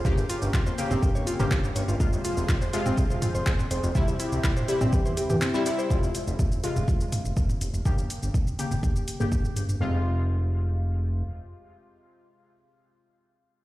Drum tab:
HH |--o---o---o---o-|--o---o---o---o-|--o---o---o---o-|--o---o---o---o-|
SH |xxxxxxxxxxxxxxxx|xxxxxxxxxxxxxxxx|xxxxxxxxxxxxxxxx|xxxxxxxxxxxxxxxx|
CP |----x-------x---|----x-------x---|----x-------x---|----------------|
T2 |-------o---o----|-------o--o--o--|-------o---o----|-------o--o--o--|
BD |o---o---o---o---|o---o---o---o---|o---o---o-------|o---o---o---o---|

HH |--o---o---o---o-|----------------|----------------|
SH |xxxxxxxxxxxxxxxx|----------------|----------------|
CP |----------------|----------------|----------------|
T2 |-------o---o----|----------------|----------------|
BD |o---o---o---o---|----------------|----------------|